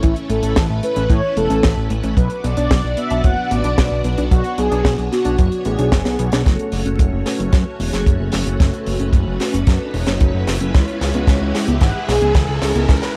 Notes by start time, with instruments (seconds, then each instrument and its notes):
Already playing: string machine A3 C#4 E4
0.03 analog synth bass A1, synth arpeggio sound E3, analog polysynth E4, string machine B4, kick, closed hi-hat
0.16 closed hi-hat
0.29 analog synth bass A1, synth arpeggio sound A3, analog polysynth A4, closed hi-hat
0.43 analog synth bass A1, synth arpeggio sound C#4, closed hi-hat
0.56 analog synth bass A1, synth arpeggio sound E3, kick, snare, closed hi-hat
0.70 analog synth bass A1
0.83 synth arpeggio sound A3, analog polysynth B4, closed hi-hat
0.96 analog synth bass A1, synth arpeggio sound C#4, closed hi-hat
1.10 analog synth bass A2, synth arpeggio sound E3, analog polysynth C#5, kick, closed hi-hat
1.37 analog synth bass E1, synth arpeggio sound A3, analog polysynth A4, closed hi-hat
1.50 analog synth bass A1, synth arpeggio sound C#4, closed hi-hat
1.63 analog synth bass A1, synth arpeggio sound E3, kick, snare, closed hi-hat
1.77 analog synth bass A1
1.90 analog synth bass A1, synth arpeggio sound A3, closed hi-hat
2.03 analog synth bass A1, synth arpeggio sound C#4, closed hi-hat
2.17 analog synth bass B1, synth arpeggio sound F#3, string machine B3 D4 F#4 D5, analog polysynth B4, kick, closed hi-hat
2.30 closed hi-hat
2.44 analog synth bass B1, synth arpeggio sound B3, analog polysynth D5, closed hi-hat
2.57 analog synth bass B1, synth arpeggio sound D4, closed hi-hat
2.71 analog synth bass B1, synth arpeggio sound F#3, kick, snare, closed hi-hat
2.84 analog synth bass B1
2.97 synth arpeggio sound B3, analog polysynth E5, closed hi-hat
3.10 analog synth bass B1, synth arpeggio sound D4, closed hi-hat
3.24 analog synth bass F#1, synth arpeggio sound F#3, analog polysynth F#5, kick, closed hi-hat
3.51 analog synth bass A1, synth arpeggio sound B3, analog polysynth D5, closed hi-hat
3.64 analog synth bass B1, synth arpeggio sound D4, closed hi-hat
3.78 analog synth bass B1, synth arpeggio sound F#3, kick, snare, closed hi-hat
3.91 analog synth bass B1
4.04 analog synth bass B1, synth arpeggio sound B3, closed hi-hat
4.18 analog synth bass B1, synth arpeggio sound D4, closed hi-hat
4.31 analog synth bass B1, synth arpeggio sound F#3, analog polysynth F#4, string machine C#5, kick, closed hi-hat
4.44 closed hi-hat
4.58 analog synth bass B1, synth arpeggio sound B3, analog polysynth G#4, closed hi-hat
4.72 analog synth bass B1, synth arpeggio sound D4, closed hi-hat
4.85 analog synth bass B1, synth arpeggio sound F#3, kick, snare, closed hi-hat
4.98 analog synth bass B1, closed hi-hat
5.12 synth arpeggio sound B3, analog polysynth F#4, snare, closed hi-hat
5.25 analog synth bass B1, synth arpeggio sound D4, closed hi-hat
5.38 analog synth bass F#1, synth arpeggio sound F#3, kick, closed hi-hat
5.52 closed hi-hat
5.65 analog synth bass A1, synth arpeggio sound B3, analog polysynth G#4, closed hi-hat
5.79 analog synth bass B1, synth arpeggio sound D4, closed hi-hat
5.92 analog synth bass F#1, synth arpeggio sound F#3, kick, snare, closed hi-hat
6.05 analog synth bass B1, snare, closed hi-hat
6.19 analog synth bass B1, synth arpeggio sound B3, closed hi-hat
6.32 analog synth bass B1, synth arpeggio sound D4, snare, closed hi-hat
6.46 analog synth bass F#1, synth arpeggio sound F#3, tine electric piano A3 C#4 F#4 C#5, string machine A3 C#4 F#4 C#5, analog polysynth A4, kick, snare, closed hi-hat, riser
6.59 closed hi-hat
6.72 analog synth bass F#1, synth arpeggio sound A3, open hi-hat
6.86 analog synth bass F#1, synth arpeggio sound C#4, closed hi-hat
6.99 analog synth bass F#1, synth arpeggio sound F#3, kick, closed hi-hat
7.13 analog synth bass F#1
7.26 synth arpeggio sound A3, tine electric piano A3 C#4 F#4 B4, snare, open hi-hat
7.39 analog synth bass F#1, synth arpeggio sound C#4, closed hi-hat
7.53 analog synth bass F#2, synth arpeggio sound F#3, analog polysynth B4, kick, snare, closed hi-hat
7.80 analog synth bass E1, synth arpeggio sound A3, analog polysynth G#4, open hi-hat
7.93 analog synth bass F#1, synth arpeggio sound C#4, snare, closed hi-hat
8.06 analog synth bass F#1, synth arpeggio sound F#3, kick, closed hi-hat
8.20 analog synth bass F#1
8.32 analog synth bass F#1, synth arpeggio sound A3, snare, open hi-hat
8.46 analog synth bass F#1, synth arpeggio sound C#4, closed hi-hat
8.60 analog synth bass F#1, synth arpeggio sound F#3, tine electric piano A3 C#4 F#4 C#5, analog polysynth A4, string machine B4, kick, snare, closed hi-hat
8.74 closed hi-hat
8.86 analog synth bass F#1, synth arpeggio sound A3, open hi-hat
9.00 analog synth bass F#1, synth arpeggio sound C#4, closed hi-hat
9.13 analog synth bass F#1, synth arpeggio sound F#3, kick, closed hi-hat
9.27 analog synth bass F#1
9.40 tine electric piano A3 C#4 F#4 B4, synth arpeggio sound A3, snare, open hi-hat
9.54 analog synth bass F#1, synth arpeggio sound C#4, closed hi-hat
9.67 analog synth bass F#2, synth arpeggio sound F#3, analog polysynth B4, kick, snare, closed hi-hat
9.94 analog synth bass E1, synth arpeggio sound A3, analog polysynth C#5, open hi-hat
10.06 analog synth bass F#1, synth arpeggio sound C#4, snare, closed hi-hat
10.20 analog synth bass F#1, synth arpeggio sound F#3, kick, closed hi-hat
10.34 analog synth bass F#1
10.47 analog synth bass F#1, synth arpeggio sound A3, snare, open hi-hat
10.60 analog synth bass F#1, synth arpeggio sound C#4, closed hi-hat
10.74 analog synth bass C#2, synth arpeggio sound E3, tine electric piano G#3 C#4 E4 B4, string machine G#3 E4, analog polysynth C#5, kick, snare, closed hi-hat
10.88 closed hi-hat
11.01 analog synth bass C#2, synth arpeggio sound G#3, snare, open hi-hat
11.14 analog synth bass C#2, synth arpeggio sound B3, closed hi-hat
11.27 analog synth bass C#2, synth arpeggio sound E3, kick, snare, closed hi-hat
11.41 analog synth bass C#2
11.54 tine electric piano G#3 C#4 E4 G#4, synth arpeggio sound G#3, snare, open hi-hat
11.68 analog synth bass C#2, synth arpeggio sound B3, closed hi-hat
11.81 analog synth bass G#1, synth arpeggio sound E3, analog polysynth F#5, kick, snare, closed hi-hat
12.08 analog synth bass B1, synth arpeggio sound G#3, analog polysynth G#4, snare, open hi-hat
12.22 analog synth bass C#2, synth arpeggio sound B3, closed hi-hat
12.35 analog synth bass C#2, synth arpeggio sound E3, kick, snare, closed hi-hat
12.48 analog synth bass C#2
12.62 analog synth bass C#2, synth arpeggio sound G#3, snare, open hi-hat
12.75 analog synth bass C#2, synth arpeggio sound B3, closed hi-hat
12.88 analog synth bass C#2, synth arpeggio sound E3, tine electric piano G#3 C#4 E4 B4, analog polysynth B4, kick, snare, closed hi-hat
13.02 snare, closed hi-hat